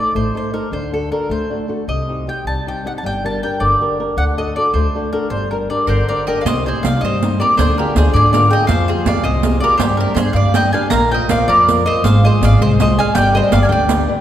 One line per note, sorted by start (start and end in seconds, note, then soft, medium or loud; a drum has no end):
0.00 0.27 D#4 soft
0.00 0.27 A4 soft
0.00 0.27 C5 soft
0.00 0.14 D5 medium
0.15 0.28 A1 medium
0.15 0.52 A3 medium
0.15 0.34 C5 medium
0.35 0.52 D#4 soft
0.35 0.52 A4 soft
0.35 0.53 C5 soft
0.35 0.53 C5 medium
0.53 0.68 D#4 soft
0.53 0.68 A4 soft
0.53 0.71 A#4 medium
0.53 0.69 C5 soft
0.72 1.09 D2 medium
0.72 1.10 D3 medium
0.72 0.93 C5 medium
0.92 1.10 D4 soft
0.92 1.11 F#4 soft
0.92 1.11 A4 soft
0.92 1.11 A4 medium
1.11 1.43 D4 soft
1.11 1.43 F#4 soft
1.11 1.43 A4 soft
1.11 1.29 A#4 medium
1.29 1.43 D2 medium
1.29 1.68 A3 soft
1.29 1.72 C5 medium
1.50 1.67 D4 soft
1.50 1.68 F#4 soft
1.50 1.68 A4 soft
1.68 1.83 D4 soft
1.68 1.84 F#4 soft
1.68 1.84 A4 soft
1.88 2.25 C2 medium
1.88 2.26 C3 medium
1.88 2.25 D#5 medium
2.09 2.26 C4 soft
2.09 2.27 D#4 soft
2.09 2.27 G4 soft
2.27 2.59 C4 soft
2.27 2.59 D#4 soft
2.27 2.59 G4 soft
2.27 2.46 G5 medium
2.45 2.59 C2 medium
2.45 2.85 G3 soft
2.45 2.68 A5 medium
2.67 2.83 C4 soft
2.67 2.84 D#4 soft
2.67 2.84 G4 soft
2.67 2.85 G5 medium
2.84 3.00 C4 soft
2.84 3.00 D#4 soft
2.84 3.00 G4 soft
2.84 2.92 F#5 medium
2.98 3.03 A5 medium
3.03 3.41 G1 medium
3.03 3.42 G3 medium
3.03 3.24 G5 medium
3.24 3.42 D4 soft
3.24 3.43 G4 soft
3.24 3.43 A#4 soft
3.24 3.42 A5 medium
3.43 3.74 D4 soft
3.43 3.74 G4 soft
3.43 3.74 A#4 soft
3.43 3.62 G5 medium
3.60 3.74 G1 medium
3.60 3.98 D3 medium
3.60 4.00 D5 medium
3.81 3.99 D4 soft
3.81 3.98 G4 soft
3.81 3.99 A#4 soft
4.00 4.14 D4 soft
4.00 4.14 G4 soft
4.00 4.14 A#4 medium
4.17 4.54 D2 medium
4.17 4.55 D3 medium
4.17 4.23 F#5 medium
4.37 4.56 D4 soft
4.37 4.56 F#4 soft
4.37 4.57 A4 soft
4.37 4.56 D#5 medium
4.56 4.87 D4 soft
4.56 4.87 F#4 soft
4.56 4.88 A4 soft
4.56 4.73 D5 medium
4.74 4.87 D2 medium
4.74 5.12 A3 medium
4.74 5.10 C5 medium
4.95 5.12 D4 soft
4.95 5.12 F#4 soft
4.95 5.12 A4 medium
5.13 5.27 D4 soft
5.13 5.28 F#4 soft
5.13 5.28 A4 medium
5.13 5.30 A#4 medium
5.30 5.68 G1 medium
5.30 5.69 G3 medium
5.30 5.50 C5 medium
5.51 5.69 D4 soft
5.51 5.69 G4 soft
5.51 5.56 A#4 medium
5.51 5.69 A#4 soft
5.70 6.02 D4 soft
5.70 6.02 G4 soft
5.70 6.02 A#4 medium
5.70 5.87 D5 medium
5.87 6.01 G1 medium
5.87 6.27 D3 medium
5.87 6.07 A#4 medium
5.87 6.28 C5 medium
5.87 6.07 D5 medium
6.09 6.27 D4 soft
6.09 6.27 G4 soft
6.09 6.26 A#4 medium
6.09 6.27 A#4 soft
6.09 6.27 D5 medium
6.27 6.43 D4 soft
6.27 6.43 G4 soft
6.27 6.43 A#4 medium
6.27 6.45 A#4 medium
6.27 6.40 D#5 medium
6.27 6.41 G5 medium
6.41 6.46 D5 soft
6.41 6.45 F5 medium
6.45 6.71 C2 medium
6.45 6.84 C3 medium
6.45 6.66 C5 medium
6.45 6.66 D#5 medium
6.45 riq medium
6.66 6.83 C4 soft
6.66 6.84 D#4 soft
6.66 6.84 G4 soft
6.66 6.84 G#4 medium
6.66 6.83 C5 medium
6.83 6.96 C2 medium
6.83 7.15 C4 soft
6.83 7.15 D#4 soft
6.83 7.16 G4 soft
6.83 7.02 D5 medium
6.83 7.01 F5 medium
6.83 riq medium
7.01 7.39 G2 medium
7.01 7.40 G3 medium
7.01 7.39 C5 medium
7.01 7.37 D#5 medium
7.22 7.39 C4 soft
7.22 7.39 D#4 soft
7.22 7.39 G4 soft
7.22 riq medium
7.40 7.54 C4 medium
7.40 7.55 D#4 medium
7.40 7.55 G4 medium
7.40 7.58 A#4 medium
7.40 7.57 D5 medium
7.57 7.83 D2 medium
7.57 7.95 D3 medium
7.57 7.77 G#4 medium
7.57 7.77 C5 medium
7.57 riq medium
7.78 7.95 D4 soft
7.78 7.95 F4 soft
7.78 7.95 G4 medium
7.78 7.96 G#4 medium
7.78 7.96 A#4 medium
7.95 8.07 D2 medium
7.95 8.26 D4 soft
7.95 8.26 F4 soft
7.95 8.27 G#4 medium
7.95 8.14 G#4 medium
7.95 8.13 C5 medium
7.95 riq medium
8.14 8.50 G#2 medium
8.14 8.50 D3 medium
8.14 8.33 G#4 medium
8.14 8.31 D5 medium
8.32 8.49 D4 soft
8.32 8.49 F4 soft
8.32 8.50 G#4 medium
8.32 8.51 A#4 medium
8.32 8.51 D5 medium
8.32 riq medium
8.50 8.65 D4 medium
8.50 8.65 F4 medium
8.50 8.65 G#4 medium
8.50 8.69 D#5 medium
8.50 8.67 G5 medium
8.67 8.93 F2 medium
8.67 9.05 F3 medium
8.67 8.88 F5 medium
8.67 riq medium
8.71 8.89 C5 medium
8.88 9.05 F4 medium
8.88 9.05 G4 soft
8.88 9.06 G#4 medium
8.88 9.07 C5 medium
9.06 9.17 F2 loud
9.06 9.36 F4 soft
9.06 9.36 G4 soft
9.06 9.37 G#4 medium
9.06 9.24 D5 medium
9.06 9.25 F5 medium
9.06 riq medium
9.23 9.60 C2 medium
9.23 9.61 C3 medium
9.23 9.59 C5 medium
9.23 9.60 D#5 medium
9.43 9.61 F4 soft
9.43 9.61 G4 soft
9.43 9.62 G#4 medium
9.43 riq medium
9.60 9.76 F4 medium
9.60 9.76 G4 soft
9.60 9.77 G#4 medium
9.60 9.79 A#4 medium
9.60 9.77 D5 medium
9.78 10.04 G2 medium
9.78 10.16 G3 medium
9.78 9.99 G4 medium
9.78 9.97 C5 medium
9.78 riq medium
9.97 10.14 D4 soft
9.97 10.15 G4 soft
9.97 10.17 G4 medium
9.97 10.14 A#4 medium
9.97 10.15 C5 medium
10.15 10.28 G2 medium
10.15 10.31 D4 soft
10.15 10.31 G4 soft
10.15 10.34 G#4 medium
10.15 10.35 C5 medium
10.15 10.31 C5 medium
10.15 riq medium
10.33 10.71 G2 medium
10.33 10.72 G3 medium
10.33 10.55 D5 medium
10.33 10.53 F5 medium
10.54 10.72 D4 soft
10.54 10.72 G4 soft
10.54 10.73 B4 soft
10.54 10.73 D#5 medium
10.54 10.72 G5 medium
10.54 riq medium
10.73 10.88 D4 medium
10.73 10.88 G4 soft
10.73 10.89 B4 medium
10.73 10.91 F5 medium
10.73 10.90 G#5 medium
10.73 riq soft
10.90 11.17 A#1 medium
10.90 11.29 A#3 medium
10.90 11.12 F5 medium
10.90 11.11 A#5 loud
10.90 riq medium
11.11 11.28 F4 medium
11.11 11.28 A#4 soft
11.11 11.29 C5 soft
11.11 11.31 D#5 medium
11.11 11.30 G5 medium
11.29 11.42 A#1 medium
11.29 11.60 F4 medium
11.29 11.61 A#4 soft
11.29 11.61 C5 medium
11.29 11.48 D5 medium
11.29 11.47 F5 medium
11.29 riq medium
11.47 11.85 F2 medium
11.47 11.85 F3 medium
11.47 11.84 A#4 medium
11.47 11.84 D5 medium
11.68 11.84 F4 medium
11.68 11.85 A#4 soft
11.68 11.86 C5 medium
11.68 riq medium
11.86 12.00 F4 medium
11.86 12.01 A#4 medium
11.86 12.01 C5 medium
11.86 12.03 C5 medium
11.86 12.05 D#5 medium
12.04 12.28 G#1 medium
12.04 12.41 G#3 medium
12.04 12.23 C5 medium
12.04 12.25 F5 medium
12.04 riq medium
12.24 12.40 F4 soft
12.24 12.41 G#4 medium
12.24 12.42 C5 medium
12.24 12.41 D#5 medium
12.41 12.53 G#1 loud
12.41 12.72 F4 soft
12.41 12.73 G#4 soft
12.41 12.60 D5 medium
12.41 12.73 D#5 medium
12.41 12.60 F5 medium
12.41 riq medium
12.59 12.95 C2 medium
12.59 12.97 G#3 medium
12.59 12.79 C5 medium
12.59 12.80 D#5 medium
12.80 12.97 F4 soft
12.80 12.97 G#4 soft
12.80 12.97 C5 medium
12.80 12.97 D#5 medium
12.80 12.98 D#5 medium
12.80 riq medium
12.98 13.12 F4 medium
12.98 13.12 G#4 medium
12.98 13.13 D#5 medium
12.98 13.15 F5 medium
12.98 13.14 G#5 loud
13.15 13.39 G1 medium
13.15 13.51 G3 medium
13.15 13.35 D5 medium
13.15 13.35 G5 loud
13.15 riq medium
13.34 13.51 G4 medium
13.34 13.51 B4 soft
13.34 13.52 C5 medium
13.34 13.52 D5 medium
13.34 13.51 D#5 medium
13.52 13.64 G1 loud
13.52 13.82 G4 medium
13.52 13.82 B4 soft
13.52 13.83 D5 medium
13.52 13.64 D5 medium
13.52 13.62 F5 medium
13.52 riq medium
13.63 13.70 F5 medium
13.63 13.69 G#5 medium
13.69 14.06 D2 medium
13.69 14.06 D3 medium
13.69 14.21 D5 medium
13.69 14.21 G5 medium
13.89 14.07 G4 soft
13.89 14.08 B4 soft
13.89 14.08 D5 soft
13.89 riq medium
14.08 14.21 G4 medium
14.08 14.21 B4 medium
14.08 14.21 D5 medium